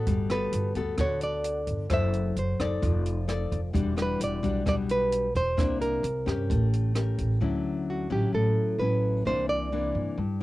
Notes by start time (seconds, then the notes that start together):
Already playing: B3 F#4 A4
0.07 G1 G3, kick, closed hi-hat
0.30 B3 F#4 A4 B4, cross-stick, closed hi-hat
0.52 G1, closed hi-hat
0.75 D2 B3 F#4 A4, kick, closed hi-hat
0.98 D3 B3 F#4 A4 C#5, kick, cross-stick, closed hi-hat
1.21 D5, closed hi-hat
1.44 closed hi-hat
1.67 G1, kick, closed hi-hat
1.90 F#1 F#3 E4 A4 C5 E5, kick, cross-stick, closed hi-hat
2.14 closed hi-hat
2.36 F#1 C5, closed hi-hat
2.59 F#1 D#4 A4 D5, kick, cross-stick, closed hi-hat
2.82 F1 F3, kick, closed hi-hat
3.06 closed hi-hat
3.28 D#4 A4 D5, cross-stick, closed hi-hat
3.52 F1, kick, closed hi-hat
3.73 E1 E3 G3 D4 F#4, kick, closed hi-hat
3.96 G3 D4 F#4, cross-stick, closed hi-hat
4.02 B4
4.20 E1 D5, closed hi-hat
4.43 B1 G3 D4 F#4, kick, closed hi-hat
4.65 B2 G3 D4 F#4 D5, kick, cross-stick, closed hi-hat
4.89 B4, closed hi-hat
5.12 closed hi-hat
5.35 E1 C5, kick, closed hi-hat
5.57 C2 C3 A#3 D4 E4, kick, cross-stick, closed hi-hat
5.81 A#4, closed hi-hat
6.03 C2, closed hi-hat
6.26 G2 C#4 G4, kick, cross-stick, closed hi-hat
6.50 A1 A3, kick, closed hi-hat
6.73 closed hi-hat
6.95 C#4 G4 A#4, cross-stick, closed hi-hat
7.18 A1, kick, closed hi-hat
7.41 D2 D3 F#3 C#4 E4
7.90 F#4
8.10 A1 F#3 C#4 E4 G4
8.33 A1 A2 A4
8.78 A1 F#3 C#4 E4 B4
9.25 C2 C3 E3 A#3 D4 C5
9.49 D5
9.72 E3 A#3 D4
9.95 G2
10.17 G2